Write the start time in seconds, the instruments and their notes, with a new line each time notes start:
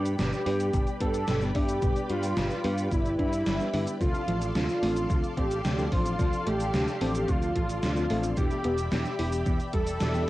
Already playing: picked electric bass G2, fm electric piano G3 B3 D4 B4, analog synth lead G4, analog synth pad G4 B4 D5 B5
0.05 closed hi-hat, cabasa
0.19 picked electric bass G1, synth arpeggio sound B2, analog synth lead G4, snare, closed hi-hat, cabasa
0.33 closed hi-hat, cabasa
0.46 picked electric bass G2, fm electric piano G3 B3 D4 B4, synth arpeggio sound G3, open hi-hat
0.60 closed hi-hat, cabasa
0.74 picked electric bass G1, synth arpeggio sound B2, kick, closed hi-hat, cabasa
0.87 closed hi-hat, cabasa
1.01 picked electric bass G2, synth arpeggio sound B3, analog synth lead A4, kick, closed hi-hat
1.14 closed hi-hat, cabasa
1.28 picked electric bass G1, synth arpeggio sound B2, snare, closed hi-hat, cabasa
1.42 fm electric piano G3 B3 D4 B4, closed hi-hat, cabasa
1.55 picked electric bass G2, fm electric piano G3 B3 D4 E5, synth arpeggio sound D4, analog synth lead G4, kick, open hi-hat
1.69 closed hi-hat, cabasa
1.82 picked electric bass G1, synth arpeggio sound B2, fm electric piano G3 B3 D4 B4, kick, closed hi-hat, cabasa
1.96 closed hi-hat, cabasa
2.10 picked electric bass G2, synth arpeggio sound G3, analog synth lead F4, closed hi-hat
2.23 closed hi-hat, cabasa
2.37 picked electric bass G1, synth arpeggio sound B2, snare, closed hi-hat, cabasa
2.51 closed hi-hat, cabasa
2.64 picked electric bass G2, fm electric piano G3 B3 D4 B4, synth arpeggio sound B3, open hi-hat
2.78 closed hi-hat, cabasa
2.92 picked electric bass G1, synth arpeggio sound B2, analog synth lead E4, kick, closed hi-hat, cabasa
3.06 closed hi-hat, cabasa
3.19 picked electric bass G2, synth arpeggio sound D4, kick, closed hi-hat
3.33 closed hi-hat, cabasa
3.46 picked electric bass G1, synth arpeggio sound G3, snare, closed hi-hat, cabasa
3.60 fm electric piano G3 B3 D4 B4, closed hi-hat, cabasa
3.73 picked electric bass G2, synth arpeggio sound D3, fm electric piano G3 B3 D4 E5, open hi-hat
3.87 closed hi-hat, cabasa
4.01 picked electric bass D2, synth arpeggio sound C3, fm electric piano F3 C4 D4 A4, analog synth lead F4, analog synth pad A4 D5 F5 C6, kick, closed hi-hat, cabasa
4.15 closed hi-hat, cabasa
4.28 picked electric bass A1, synth arpeggio sound F3, closed hi-hat
4.42 closed hi-hat, cabasa
4.55 picked electric bass D2, synth arpeggio sound C3, analog synth lead F4, snare, closed hi-hat, cabasa
4.69 closed hi-hat, cabasa
4.83 picked electric bass A1, fm electric piano F3 C4 D4 A4, synth arpeggio sound A3, open hi-hat
4.96 closed hi-hat, cabasa
5.10 picked electric bass D2, synth arpeggio sound C3, kick, closed hi-hat, cabasa
5.24 closed hi-hat, cabasa
5.37 picked electric bass A1, synth arpeggio sound C4, analog synth lead G4, kick, closed hi-hat
5.51 closed hi-hat, cabasa
5.65 picked electric bass D2, synth arpeggio sound C3, snare, closed hi-hat, cabasa
5.78 fm electric piano F3 C4 D4 A4, closed hi-hat, cabasa
5.92 picked electric bass A1, fm electric piano F3 C4 D4 C5, synth arpeggio sound F3, analog synth lead F4, kick, open hi-hat
6.06 closed hi-hat, cabasa
6.19 picked electric bass D2, synth arpeggio sound C3, fm electric piano F3 C4 D4 A4, kick, closed hi-hat, cabasa
6.33 closed hi-hat, cabasa
6.46 picked electric bass A1, synth arpeggio sound A3, analog synth lead G4, closed hi-hat
6.60 closed hi-hat, cabasa
6.74 picked electric bass D2, synth arpeggio sound C3, snare, closed hi-hat, cabasa
6.87 closed hi-hat, cabasa
7.01 picked electric bass A1, fm electric piano F3 C4 D4 A4, synth arpeggio sound C4, open hi-hat
7.15 closed hi-hat, cabasa
7.28 picked electric bass D2, synth arpeggio sound C3, analog synth lead F4, kick, closed hi-hat, cabasa
7.42 closed hi-hat, cabasa
7.55 picked electric bass A1, synth arpeggio sound F3, kick, closed hi-hat
7.69 closed hi-hat, cabasa
7.83 picked electric bass D2, synth arpeggio sound C3, snare, closed hi-hat, cabasa
7.96 fm electric piano F3 C4 D4 A4, closed hi-hat, cabasa
8.10 picked electric bass A1, fm electric piano F3 C4 D4 C5, synth arpeggio sound A3, open hi-hat
8.24 closed hi-hat, cabasa
8.37 picked electric bass E2, synth arpeggio sound B2, fm electric piano E3 B3 D4 G4, analog synth lead G4, analog synth pad G4 D5 E5 B5, kick, closed hi-hat, cabasa
8.51 closed hi-hat, cabasa
8.64 picked electric bass E1, synth arpeggio sound B3, closed hi-hat
8.78 closed hi-hat, cabasa
8.92 picked electric bass E2, synth arpeggio sound B2, analog synth lead G4, snare, closed hi-hat, cabasa
9.05 closed hi-hat, cabasa
9.19 picked electric bass E1, fm electric piano E3 B3 D4 G4, synth arpeggio sound E3, open hi-hat
9.33 closed hi-hat, cabasa
9.46 picked electric bass E2, synth arpeggio sound B2, kick, closed hi-hat, cabasa
9.60 closed hi-hat, cabasa
9.73 picked electric bass E1, synth arpeggio sound G3, analog synth lead A4, kick, closed hi-hat
9.87 closed hi-hat, cabasa
10.01 picked electric bass E2, synth arpeggio sound B2, snare, closed hi-hat, cabasa
10.14 fm electric piano E3 B3 D4 G4, closed hi-hat, cabasa